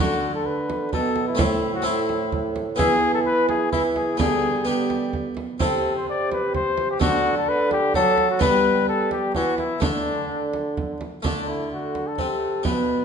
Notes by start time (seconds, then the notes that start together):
Already playing: A3 D4
0.00 D3 F#4
0.35 A4
0.46 B4
0.70 frame drum
0.93 B2 A4, frame drum
1.16 frame drum
1.28 E4
1.35 A3 C4 E4, frame drum
1.39 A2
1.75 F#4
1.82 A3 C4 E4
2.09 frame drum
2.32 frame drum
2.56 frame drum
2.76 E3 B3 E4 G#4, frame drum
3.14 A4
3.26 B4
3.49 G#4, frame drum
3.72 E3 E4, frame drum
3.96 G#4, frame drum
4.17 D3 G3 B3 D4 G#4, frame drum
4.65 B3 D4 G4
4.90 frame drum
5.13 frame drum
5.37 frame drum
5.60 C3 C4 E4 A4, frame drum
5.96 C5
6.09 D5
6.32 B4, frame drum
6.54 C5, frame drum
6.77 frame drum
6.91 G4
7.00 D3 A3 D4 F#4, frame drum
7.37 A4
7.49 B4
7.71 G4, frame drum
7.94 F#3 A4, frame drum
8.18 frame drum
8.31 F#4
8.39 G3 B3 D4 B4, frame drum
8.88 A4
9.11 G4, frame drum
9.35 E3 F#4, frame drum
9.58 E4, frame drum
9.80 D3 A3 D4, frame drum
10.53 frame drum
10.77 frame drum
11.01 frame drum
11.23 D3 A3 D4, frame drum
11.48 E4
11.71 F#4
11.95 frame drum
12.07 A4
12.18 C3, frame drum
12.63 B2 D4 B4, frame drum